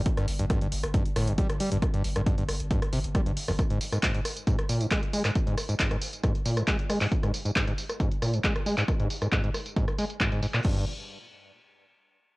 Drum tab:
CC |----------------|----------------|----------------|----------------|
HH |xxoxxxoxxxoxxxox|xxoxxxoxxxoxxxoo|xxoxxxoxxxoxxxox|xxoxxxoxxxoxxxoo|
TB |----------------|----------------|x-xxx-xxx-xxx-xx|x-xxx-xxx-xxx-xx|
CP |----------------|----------------|----x-------x--x|----x-------x--x|
SD |-r--r--r--r--r--|r--r--r--r--r--r|r--r--r--r--r--r|--r--r--r--r--r-|
BD |o---o---o---o---|o---o---o---o---|o---o---o---o---|o---o---o---o---|

CC |----------------|----------------|x---------------|
HH |xxoxxxoxxxoxxxox|xxoxxxoxxxoxxxoo|----------------|
TB |x-xx--xxx-xxx-xx|x-xxx-xxx-xxx-xx|----------------|
CP |----x-------x--x|----x-------x--x|----------------|
SD |-r--r--r--r--r--|r--r--r--r--r--r|----------------|
BD |o---o---o---o---|o---o---o---o---|o---------------|